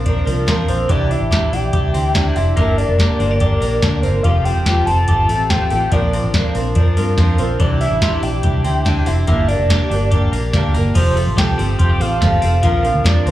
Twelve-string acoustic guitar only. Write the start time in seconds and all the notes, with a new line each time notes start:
0.04 F3 C4 D4 A#4
0.25 F3 C4 D4 A#4
0.47 A#2 D3 F3 C4 D4 A#4
0.68 F3 C4 D4 A#4
0.89 C3 G3 D4 E4 G4
1.09 D4 E4 G4
1.31 C3 G3 D4 E4 G4
1.52 D4 E4 G4
1.73 G3 D4 E4 G4
1.94 D4 E4 G4
2.14 C3 G3 D4 E4 G4
2.35 D4 E4 G4
2.57 G2 D3 G3 A#3 D4 A#4
2.78 G3 A#3 D4 A#4
2.98 G2 D3 G3 A#3 D4 A#4
3.19 G3 A#3 D4 A#4
3.40 G3 A#3 D4 A#4
3.60 G3 A#3 D4 A#4
3.82 G2 D3 G3 A#3 D4 A#4
4.03 G3 A#3 D4 A#4
4.25 F3 G3 C4 F4 A4
4.46 C4 F4 A4
4.67 F3 G3 C4 F4 A4
4.88 C4 F4 A4
5.08 G3 C4 F4
5.12 A4
5.30 C4 F4 A4
5.50 F3 G3 C4 F4 A4
5.71 C4 F4 A4
5.92 A#2 D3 F3 C4 D4 A#4
6.13 F3 C4 D4 A#4
6.34 A#2 D3 F3 C4 D4 A#4
6.54 F3 C4 D4 A#4
6.76 F3 C4 D4 A#4
6.97 F3 C4 D4 A#4
7.17 A#2 D3 F3 C4 D4 A#4
7.39 F3 C4 D4 A#4
7.60 C3 G3 D4 E4 G4
7.80 D4 E4 G4
8.02 C3 G3 D4 E4 G4
8.22 D4 E4 G4
8.43 G3 D4 E4 G4
8.64 D4 E4 G4
8.85 C3 G3 D4 E4 G4
9.07 D4 E4 G4
9.28 G2 D3 G3 A#3 D4 G4
9.49 G3 A#3 D4 G4
9.70 G2 D3 G3 A#3 D4 G4
9.91 G3 A#3 D4 G4
10.10 G3 A#3 D4 G4
10.33 G3 A#3 D4 G4
10.54 G2 D3 G3 A#3 D4 G4
10.74 G3 A#3 D4 G4
10.94 F3 C4 G4 A4
11.16 C4 G4 A4
11.38 F3 C4 G4 A4
11.58 C4 G4 A4
11.78 F3 C4 G4 A4
12.00 C4 G4 A4
12.22 F3 C4 G4 A4
12.43 C4 G4 A4
12.63 A#2 D3 F3 C4 D4 A#4
12.83 F3 C4 D4 A#4
13.04 A#2 D3 F3 C4 D4 A#4
13.26 C4 D4 A#4